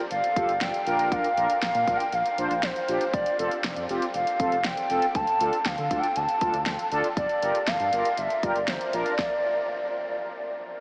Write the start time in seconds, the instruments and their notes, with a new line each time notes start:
0.11 analog synth bass G1, soft synth lead F5, closed hi-hat
0.24 closed hi-hat
0.36 analog synth bass G1, analog polysynth F4 G4 A4, kick, closed hi-hat
0.49 analog synth bass G1, closed hi-hat
0.61 analog synth bass G1, soft synth lead G5, snare, closed hi-hat
0.74 closed hi-hat
0.87 analog synth bass A#1, analog polysynth D4 F4 A#4, closed hi-hat
0.99 closed hi-hat
1.12 soft synth lead F5, kick, closed hi-hat
1.24 closed hi-hat
1.37 analog synth bass A#1, analog polysynth D4 F4 A#4, closed hi-hat
1.50 closed hi-hat
1.62 analog synth bass A#1, soft synth lead F5, snare, closed hi-hat
1.75 analog synth bass A#2, closed hi-hat
1.87 analog synth bass A#1, analog polysynth D4 F4 A#4, kick, closed hi-hat
1.96 soft synth lead G5
2.00 closed hi-hat
2.12 analog synth bass A#1, soft synth lead F5, closed hi-hat
2.26 closed hi-hat
2.38 analog synth bass A#1, analog polysynth D4 F4 C5, closed hi-hat
2.51 analog synth bass A#1, closed hi-hat
2.63 analog synth bass A#1, soft synth lead C5, snare, closed hi-hat
2.76 closed hi-hat
2.88 analog synth bass A#1, analog polysynth D4 F4 G4, closed hi-hat
3.01 closed hi-hat
3.13 analog synth bass F1, soft synth lead D5, kick, closed hi-hat
3.26 closed hi-hat
3.38 analog synth bass F1, analog polysynth C4 F4 A4, soft synth lead D5, closed hi-hat
3.51 closed hi-hat
3.64 analog synth bass F1, snare, closed hi-hat
3.76 analog synth bass F2, closed hi-hat
3.89 analog synth bass F1, analog polysynth C4 F4 G4, closed hi-hat
4.02 closed hi-hat
4.14 analog synth bass F1, soft synth lead F5, closed hi-hat
4.27 closed hi-hat
4.40 analog synth bass F1, analog polysynth C4 F4 A4, kick, closed hi-hat
4.52 analog synth bass F1, closed hi-hat
4.64 analog synth bass F1, soft synth lead G5, snare, closed hi-hat
4.77 closed hi-hat
4.90 analog synth bass F1, analog polysynth C4 F4 A4, closed hi-hat
5.02 closed hi-hat
5.15 analog synth bass D2, soft synth lead A5, kick, closed hi-hat
5.27 closed hi-hat
5.40 analog synth bass D2, analog polysynth D4 F4 A4, closed hi-hat
5.53 closed hi-hat
5.65 analog synth bass D2, soft synth lead F5, snare, closed hi-hat
5.78 analog synth bass D3, closed hi-hat
5.91 analog synth bass D2, analog polysynth D4 F4 A4, kick, closed hi-hat
5.99 soft synth lead G5
6.03 closed hi-hat
6.16 analog synth bass D2, soft synth lead A5, closed hi-hat
6.29 closed hi-hat
6.41 analog synth bass D2, analog polysynth D4 F4 A4, kick, closed hi-hat
6.54 analog synth bass D2, closed hi-hat
6.66 analog synth bass D2, snare, closed hi-hat
6.79 closed hi-hat
6.91 analog synth bass D2, analog polysynth D4 F4 A4, closed hi-hat
7.04 closed hi-hat
7.17 analog synth bass G1, soft synth lead D5, kick, closed hi-hat
7.29 closed hi-hat
7.42 analog synth bass G1, analog polysynth F4 G4 A#4, closed hi-hat
7.55 closed hi-hat
7.67 analog synth bass G1, soft synth lead F5, snare, closed hi-hat
7.80 analog synth bass G2, closed hi-hat
7.92 analog synth bass G1, analog polysynth F4 G4 A#4, closed hi-hat
8.05 closed hi-hat
8.17 analog synth bass G1, soft synth lead E5, closed hi-hat
8.30 closed hi-hat
8.43 analog synth bass G1, analog polysynth F4 G4 A#4, soft synth lead D5, kick, closed hi-hat
8.56 analog synth bass G1, closed hi-hat
8.68 analog synth bass G1, soft synth lead C5, snare, closed hi-hat
8.81 closed hi-hat
8.93 analog synth bass A#1, analog polysynth D4 F4 A#4, soft synth lead D5, closed hi-hat
9.06 closed hi-hat
9.19 kick, snare